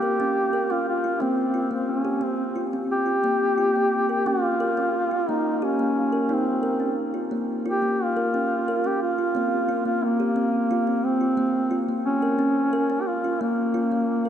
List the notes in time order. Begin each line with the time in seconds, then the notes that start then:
Already playing: G4
0.02 A#4
0.20 C#4
0.53 A#4
0.70 C#4 F4
0.88 F4
1.04 F4
1.20 A#3 C4
1.54 F4
1.71 A#3 C4
1.90 C#4
2.05 G4
2.21 C4
2.56 F4
2.73 C4
2.91 G4
3.06 F4
3.24 A#3
3.58 F4
3.76 A#3
4.09 A#4
4.26 C#4 F4
4.60 A#4
4.77 C#4
5.11 F4
5.29 A#3 D#4
5.57 D#4
5.62 C#4 G4
5.79 A#3
6.13 A#4
6.29 C4 D#4
6.63 A#4
6.80 C#4
7.14 F4
7.31 A#3
7.66 F4 G4
7.82 A#3
8.03 F4
8.17 A#4
8.34 C#4
8.68 A#4
8.84 C#4 G4
9.02 F4
9.19 F4
9.35 A#3 C4
9.69 F4
9.85 A#3 F4
10.04 A#3
10.20 G4
10.36 C4
10.71 F4
10.87 C4
11.04 C4
11.21 F4
11.37 A#3
11.71 F4
11.89 A#3
12.05 C#4
12.22 A#4
12.39 C#4
12.73 A#4
12.90 C#4
13.01 G4
13.07 F4
13.24 F4
13.41 A#3
13.74 F4
13.92 A#3
14.25 A#4